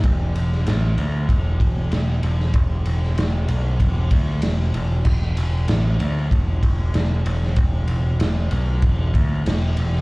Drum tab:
CC |----------------|----------------|x---------------|----------------|
RD |x-x-x-x-x-x-x-x-|x-x-x-x-x-x-x-x-|--x-x-x-x-x-x-x-|x-x-x-x-x-x-x-x-|
SD |---oo-------o--o|---oo-------o---|----o-------o--o|----o-------o--o|
BD |o-------o-o-----|o-------o-o-----|o-------o-o-----|o-------o-o-----|